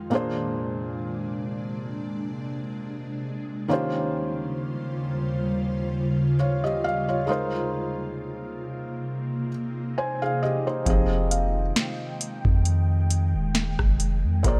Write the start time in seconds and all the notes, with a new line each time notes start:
0.10 A#2 C3 G#3 A#3 D4 G#4
0.15 C5
1.91 G#3
3.68 D#2 C#3 D#3 G3 A#3 C#4 F4 G4 C5
3.73 C5
6.39 F4 C#5
6.64 G4 D#5
6.84 F5
7.08 F4 C#5
7.27 C3 G#3 A#3 D#4 F4 A#4
7.32 C5
9.07 D#4
9.98 C5 G#5
10.22 G#4 F5
10.43 G4 D#5
10.67 D#4 C5
10.85 F1 D#3 F3 G#3 C4 G4 G#4 G5, kick, closed hi-hat
10.90 D#5
11.31 F5, closed hi-hat
11.76 snare, closed hi-hat
12.21 closed hi-hat
12.45 F2, kick
12.65 closed hi-hat
13.10 closed hi-hat
13.34 D#1
13.55 snare, closed hi-hat
13.79 F1, kick, cross-stick
14.00 closed hi-hat
14.24 F2
14.43 A#1 A#2 C3 A#3 D4 G#4 C5 A#5, kick, closed hi-hat
14.48 D5